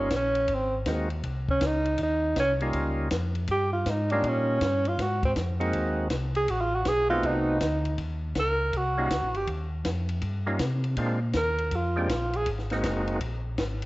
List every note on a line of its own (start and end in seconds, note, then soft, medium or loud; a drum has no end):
0.00 0.10 G1 medium
0.00 0.14 C#4 medium
0.10 0.47 A#1 medium
0.10 kick soft
0.10 snare medium
0.10 hi-hat pedal medium
0.10 ride medium
0.16 0.56 C#4 medium
0.35 ride soft
0.48 0.85 G#1 medium
0.48 kick soft
0.48 ride medium
0.54 0.76 C4 medium
0.86 1.23 D#2 medium
0.86 1.09 G#3 medium
0.86 1.09 A#3 soft
0.86 1.09 C4 soft
0.86 1.09 D#4 soft
0.86 1.09 F#4 medium
0.86 kick soft
0.86 snare medium
0.86 hi-hat pedal medium
0.86 ride medium
1.10 ride soft
1.23 1.60 C2 medium
1.23 kick soft
1.23 ride medium
1.48 1.67 C#4 medium
1.48 kick soft
1.61 1.98 C#2 medium
1.61 kick soft
1.61 snare medium
1.61 hi-hat pedal medium
1.61 ride medium
1.66 2.01 D#4 medium
1.85 ride soft
1.98 2.35 D#2 medium
1.98 kick soft
1.98 ride medium
2.03 2.36 D#4 medium
2.36 2.73 C2 medium
2.36 2.53 C#4 medium
2.36 kick soft
2.36 snare medium
2.36 hi-hat pedal medium
2.36 ride medium
2.61 3.09 G3 medium
2.61 3.09 A#3 medium
2.61 3.09 C#4 medium
2.61 3.09 D#4 medium
2.61 3.09 F4 medium
2.61 ride soft
2.73 3.10 C#2 medium
2.73 kick soft
2.73 ride medium
3.11 3.47 F2 medium
3.11 kick soft
3.11 snare medium
3.11 hi-hat pedal medium
3.11 ride medium
3.35 ride soft
3.48 3.85 G2 medium
3.48 3.72 G4 medium
3.48 kick soft
3.48 ride medium
3.73 3.91 F4 medium
3.86 4.22 G#2 medium
3.86 4.13 D#4 medium
3.86 kick soft
3.86 snare medium
3.86 hi-hat pedal medium
3.86 ride medium
4.10 4.59 G3 medium
4.10 4.59 A#3 medium
4.10 4.59 C#4 medium
4.10 4.29 D4 medium
4.10 4.59 D#4 medium
4.10 4.59 F4 medium
4.10 ride soft
4.23 4.60 A#2 medium
4.23 kick soft
4.23 ride medium
4.27 4.89 C#4 medium
4.60 4.97 G2 medium
4.60 kick soft
4.60 snare medium
4.60 hi-hat pedal soft
4.60 ride medium
4.85 5.04 F4 medium
4.85 ride soft
4.98 5.35 G#2 medium
4.98 kick soft
4.98 snare soft
4.98 ride medium
5.02 5.24 F#4 medium
5.23 5.32 C4 medium
5.23 kick medium
5.23 ride soft
5.35 5.72 F2 medium
5.35 kick soft
5.35 snare medium
5.35 hi-hat pedal medium
5.35 ride medium
5.60 6.08 G#3 medium
5.60 6.08 A#3 medium
5.60 6.08 C4 medium
5.60 6.08 D#4 medium
5.60 6.08 F#4 medium
5.60 ride soft
5.73 6.10 D#2 medium
5.73 kick soft
5.73 ride medium
6.10 6.47 C2 medium
6.10 kick soft
6.10 snare medium
6.10 hi-hat pedal medium
6.10 ride medium
6.35 6.52 G#4 medium
6.35 ride soft
6.48 6.84 A1 medium
6.48 6.63 F#4 medium
6.48 kick soft
6.48 ride medium
6.61 6.77 F4 medium
6.76 6.90 F#4 medium
6.85 7.22 B1 medium
6.85 7.09 G#4 loud
6.85 kick soft
6.85 snare medium
6.85 hi-hat pedal medium
6.85 ride medium
7.10 7.58 A3 medium
7.10 7.58 B3 medium
7.10 7.58 C4 medium
7.10 7.58 D#4 medium
7.10 7.28 F4 loud
7.10 7.58 F#4 medium
7.23 7.60 C2 medium
7.23 8.00 D#4 medium
7.23 kick soft
7.23 ride medium
7.60 7.97 D2 medium
7.60 kick soft
7.60 snare medium
7.60 hi-hat pedal medium
7.60 ride medium
7.85 ride soft
7.98 8.34 D#2 medium
7.98 kick soft
7.98 ride medium
8.35 8.72 C#2 medium
8.35 kick soft
8.35 snare medium
8.35 hi-hat pedal medium
8.35 ride medium
8.39 8.79 A#4 loud
8.73 9.09 C2 medium
8.73 kick soft
8.73 ride medium
8.77 9.38 F#4 medium
8.97 9.09 G3 medium
8.97 9.09 A#3 medium
8.97 9.09 C#4 medium
8.97 9.10 D#4 medium
8.97 9.10 F4 medium
9.10 9.22 C#2 medium
9.10 kick soft
9.10 snare medium
9.10 hi-hat pedal medium
9.10 ride medium
9.22 9.35 A#1 medium
9.34 9.46 G1 medium
9.34 9.49 G4 medium
9.34 ride soft
9.47 9.84 D#2 medium
9.47 kick soft
9.47 ride medium
9.85 10.21 F2 medium
9.85 kick soft
9.85 snare medium
9.85 hi-hat pedal soft
9.85 ride medium
10.09 ride soft
10.22 10.59 G2 medium
10.22 kick soft
10.22 ride medium
10.47 10.59 G3 medium
10.47 10.59 A#3 medium
10.47 10.59 C#4 medium
10.47 10.59 D#4 medium
10.47 10.59 F4 medium
10.59 10.96 C3 medium
10.59 kick soft
10.59 snare medium
10.59 hi-hat pedal medium
10.59 ride medium
10.84 ride soft
10.97 11.34 A#2 medium
10.97 11.20 G#3 soft
10.97 11.20 A#3 medium
10.97 11.20 C4 medium
10.97 11.20 D4 medium
10.97 11.20 F4 medium
10.97 kick soft
10.97 ride medium
11.34 11.71 D#2 medium
11.34 11.77 A#4 medium
11.34 kick soft
11.34 snare medium
11.34 hi-hat pedal soft
11.34 ride medium
11.59 ride soft
11.71 12.08 F2 medium
11.71 kick soft
11.71 ride medium
11.76 12.38 F4 medium
11.96 12.08 G#3 medium
11.96 12.08 A#3 medium
11.96 12.09 C4 medium
11.96 12.09 D4 medium
11.96 12.09 G4 medium
12.09 12.46 A#1 medium
12.09 kick soft
12.09 snare medium
12.09 hi-hat pedal medium
12.09 ride medium
12.33 12.48 G#4 medium
12.33 ride soft
12.46 12.83 G#1 medium
12.46 kick soft
12.46 ride medium
12.59 snare soft
12.70 13.20 G#3 medium
12.70 13.20 A#3 medium
12.70 13.20 C4 medium
12.70 13.20 D#4 medium
12.70 13.20 F#4 medium
12.70 snare soft
12.70 ride soft
12.84 13.21 F#1 medium
12.84 kick soft
12.84 snare medium
12.84 hi-hat pedal soft
12.84 ride medium
13.08 ride soft
13.21 13.58 A#1 medium
13.21 kick soft
13.21 ride medium
13.58 13.86 G#1 medium
13.58 kick soft
13.58 snare medium
13.58 hi-hat pedal medium
13.58 ride medium
13.82 ride soft